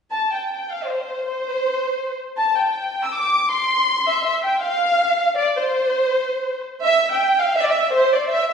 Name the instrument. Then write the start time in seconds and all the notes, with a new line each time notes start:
violin section
0.12 A5
0.33 G5
0.72 F5
0.90 C5
1.27 C5
2.38 A5
2.60 G5
3.04 E6
3.13 D6
3.51 C6
4.07 E5
4.24 E5
4.45 G5
4.63 F5
5.37 D5
5.57 C5
6.84 E5
7.12 G5
7.40 F5
7.57 E5
7.63 D5
7.70 E5
7.93 C5
8.13 D5
8.29 E5